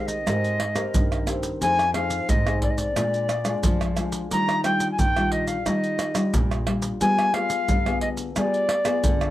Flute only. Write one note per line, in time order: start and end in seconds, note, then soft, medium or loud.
0.07 1.28 D#5 medium
1.62 1.93 G#5 loud
1.94 2.31 F5 medium
2.29 2.62 D#5 loud
2.62 2.72 D5 medium
2.70 2.79 D#5 medium
2.77 3.98 D5 medium
4.32 4.63 A#5 loud
4.64 4.89 G5 medium
4.91 5.01 G#5 medium
4.99 5.33 G5 loud
5.32 5.49 D#5 medium
5.47 5.68 F5 medium
5.66 6.34 D#5 medium
7.01 7.35 G#5 loud
7.34 8.01 F5 loud
8.01 8.09 D#5 medium
8.36 9.30 D5 medium